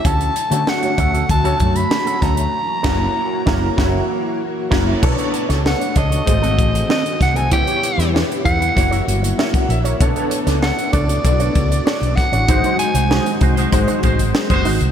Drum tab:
CC |----------------|--x-----------x-|x---------------|----------------|
HH |xxxx-xxxxxxx-xxx|----------------|-xxx-xxxxxxx-xxx|xxxx-xxxxxxx-xxx|
SD |----o-------o-o-|--o---o-o-----o-|---oo-------o-o-|---oo-------o---|
BD |o-----o-o-o---o-|--o---o-o-----o-|o-----o-o-o---o-|o-----o-o----o--|

CC |----------------|----------------|
HH |xxxx-xxxxxxx-xxx|xxxx-xxxxxxx-xox|
SD |---oo-------o-o-|----o-------o---|
BD |o-----o-o-o---o-|o-----o-o-o--o--|